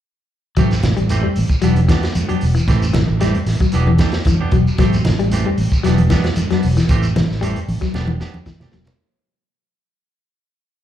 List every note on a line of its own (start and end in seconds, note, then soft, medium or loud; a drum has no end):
0.57 0.81 A1 medium
0.57 0.74 E3 soft
0.57 0.71 F#3 medium
0.57 0.74 A3 medium
0.57 0.74 C4 medium
0.57 0.75 G4 medium
0.57 kick medium
0.57 closed hi-hat medium
0.57 high conga soft
0.57 low conga medium
0.57 shekere medium
0.71 snare soft
0.71 closed hi-hat soft
0.71 shekere medium
0.83 0.96 A1 medium
0.83 snare medium
0.83 closed hi-hat soft
0.83 high conga medium
0.83 low conga medium
0.97 1.22 A1 medium
0.97 1.11 G3 medium
0.97 closed hi-hat soft
0.97 shekere soft
1.09 1.27 E3 medium
1.09 1.27 A3 medium
1.09 1.27 C4 medium
1.09 1.27 G4 medium
1.09 closed hi-hat medium
1.09 high conga soft
1.09 shekere medium
1.23 1.37 G3 medium
1.36 1.49 A1 medium
1.36 open hi-hat medium
1.36 shekere soft
1.49 muted fingered electric bass stroke soft
1.49 kick medium
1.49 closed hi-hat soft
1.49 shekere medium
1.62 1.87 E1 medium
1.62 1.79 E3 medium
1.62 1.76 F#3 medium
1.62 1.80 B3 medium
1.62 1.80 D4 medium
1.62 1.80 G4 medium
1.62 closed hi-hat medium
1.62 high conga soft
1.62 shekere medium
1.76 closed hi-hat soft
1.76 high conga medium
1.88 2.03 E3 medium
1.88 2.06 E3 medium
1.88 2.06 B3 medium
1.88 2.06 D4 medium
1.88 2.06 G4 medium
1.88 kick medium
1.88 snare medium
1.88 closed hi-hat soft
1.88 high conga medium
1.88 shekere medium
2.03 snare medium
2.03 closed hi-hat soft
2.03 shekere soft
2.15 closed hi-hat medium
2.15 high conga medium
2.15 shekere medium
2.29 2.43 F#3 medium
2.29 2.45 B3 soft
2.29 2.45 D4 soft
2.29 2.44 G4 medium
2.29 muted fingered electric bass stroke soft
2.29 closed hi-hat soft
2.41 2.55 E1 medium
2.41 open hi-hat medium
2.41 shekere soft
2.55 2.69 E3 medium
2.55 closed hi-hat soft
2.55 shekere medium
2.68 2.92 A1 medium
2.68 2.85 E3 medium
2.68 2.85 A3 medium
2.68 2.85 C4 medium
2.68 2.85 G4 medium
2.68 kick medium
2.68 snare soft
2.68 closed hi-hat medium
2.68 high conga soft
2.68 low conga medium
2.68 shekere medium
2.82 closed hi-hat soft
2.82 shekere medium
2.93 3.08 A1 medium
2.93 3.08 E3 medium
2.93 snare medium
2.93 closed hi-hat soft
2.93 high conga medium
2.93 low conga medium
3.09 3.33 A1 medium
3.09 shekere soft
3.20 3.37 E3 medium
3.20 3.35 G3 medium
3.20 3.38 A3 medium
3.20 3.38 C4 medium
3.20 3.38 G4 medium
3.20 snare soft
3.20 closed hi-hat medium
3.20 high conga soft
3.20 shekere medium
3.34 closed hi-hat soft
3.46 3.60 A1 medium
3.46 snare soft
3.46 open hi-hat medium
3.46 shekere soft
3.60 3.75 F#3 medium
3.60 muted fingered electric bass stroke soft
3.60 kick medium
3.60 closed hi-hat soft
3.60 shekere medium
3.72 3.98 E1 medium
3.72 3.90 E3 medium
3.72 3.90 B3 medium
3.72 3.90 D4 medium
3.72 3.91 G4 medium
3.72 closed hi-hat medium
3.72 high conga soft
3.72 shekere medium
3.87 4.02 E3 medium
3.87 high conga medium
3.98 4.16 E3 medium
3.98 4.17 D4 medium
3.98 4.17 G4 medium
3.98 kick medium
3.98 snare medium
3.98 closed hi-hat soft
3.98 high conga medium
3.98 shekere medium
4.12 snare medium
4.12 closed hi-hat soft
4.12 shekere soft
4.25 4.41 E3 medium
4.25 kick medium
4.25 closed hi-hat medium
4.25 high conga medium
4.25 shekere medium
4.40 4.56 B3 soft
4.40 4.56 D4 medium
4.40 4.56 G4 medium
4.40 muted fingered electric bass stroke soft
4.51 4.65 E1 medium
4.51 4.67 F#3 medium
4.51 kick medium
4.51 closed hi-hat soft
4.51 shekere soft
4.67 shekere medium
4.78 5.03 A1 medium
4.78 4.93 F#3 medium
4.78 4.96 A3 medium
4.78 4.96 C4 medium
4.78 4.96 G4 medium
4.78 muted clean electric guitar stroke medium
4.78 kick medium
4.78 snare soft
4.78 closed hi-hat medium
4.78 high conga soft
4.78 low conga medium
4.78 shekere medium
4.93 closed hi-hat soft
4.93 shekere medium
5.05 5.18 A1 medium
5.05 snare medium
5.05 closed hi-hat soft
5.05 high conga medium
5.05 low conga medium
5.19 5.43 A1 medium
5.19 5.34 G3 medium
5.19 closed hi-hat soft
5.19 shekere soft
5.31 5.49 E3 medium
5.31 5.49 A3 medium
5.31 5.49 C4 medium
5.31 5.49 G4 medium
5.31 closed hi-hat medium
5.31 high conga soft
5.31 shekere medium
5.46 5.60 G3 medium
5.58 5.71 A1 medium
5.58 open hi-hat medium
5.58 shekere soft
5.72 muted fingered electric bass stroke soft
5.72 kick medium
5.72 closed hi-hat soft
5.72 shekere medium
5.83 6.09 E1 loud
5.83 6.01 E3 medium
5.83 5.98 F#3 medium
5.83 6.02 B3 medium
5.83 6.02 D4 medium
5.83 6.02 G4 medium
5.83 snare soft
5.83 closed hi-hat medium
5.83 high conga soft
5.83 shekere medium
5.98 closed hi-hat soft
5.98 high conga medium
6.10 6.27 E3 medium
6.10 6.25 E3 medium
6.10 6.27 B3 medium
6.10 6.28 D4 medium
6.10 6.28 G4 medium
6.10 kick medium
6.10 snare medium
6.10 closed hi-hat soft
6.10 high conga medium
6.10 shekere medium
6.24 snare medium
6.24 closed hi-hat soft
6.24 shekere soft
6.36 closed hi-hat medium
6.36 high conga medium
6.36 shekere medium
6.50 6.65 F#3 medium
6.50 6.67 B3 soft
6.50 6.67 D4 medium
6.50 muted fingered electric bass stroke soft
6.50 snare soft
6.50 closed hi-hat soft
6.63 6.77 E1 medium
6.63 open hi-hat medium
6.63 shekere soft
6.77 6.91 E3 medium
6.77 snare soft
6.77 closed hi-hat soft
6.77 shekere medium
6.89 7.13 A1 medium
6.89 7.06 E3 medium
6.89 7.06 A3 medium
6.89 7.07 C4 medium
6.89 7.07 G4 medium
6.89 kick medium
6.89 closed hi-hat medium
6.89 high conga soft
6.89 low conga medium
6.89 shekere medium
7.03 closed hi-hat soft
7.03 shekere medium
7.16 7.29 A1 medium
7.16 7.30 E3 medium
7.16 snare medium
7.16 closed hi-hat soft
7.16 high conga medium
7.16 low conga medium
7.30 7.54 A1 medium
7.30 snare soft
7.30 shekere soft
7.41 7.59 E3 medium
7.41 7.56 G3 medium
7.41 7.59 A3 medium
7.41 7.59 C4 medium
7.41 7.59 G4 medium
7.41 closed hi-hat medium
7.41 high conga soft
7.41 shekere medium
7.56 closed hi-hat soft
7.68 7.81 A1 medium
7.68 open hi-hat medium
7.68 high conga medium
7.68 shekere soft
7.81 7.96 F#3 medium
7.81 muted fingered electric bass stroke soft
7.81 kick medium
7.81 snare soft
7.81 shekere medium
7.94 8.18 E1 loud
7.94 8.11 B3 medium
7.94 8.11 D4 medium
7.94 8.12 G4 medium
7.94 snare soft
7.94 high conga medium
7.94 shekere medium
8.07 8.22 E3 medium
8.07 high conga loud
8.20 8.37 B3 medium
8.20 8.37 D4 medium
8.20 8.38 G4 medium
8.20 snare medium
8.20 shekere medium
8.34 high conga medium
8.34 shekere soft
8.46 8.60 E3 medium
8.46 kick medium
8.46 snare medium
8.46 low conga medium
8.46 shekere medium
8.60 8.77 D4 soft
8.60 8.76 G4 medium
8.60 muted fingered electric bass stroke soft
8.60 snare medium
8.60 low conga loud
8.72 8.85 E1 medium
8.72 8.87 F#3 medium
8.72 snare medium
8.72 low conga medium
8.72 shekere soft
8.86 snare medium
8.86 low conga loud
8.86 shekere medium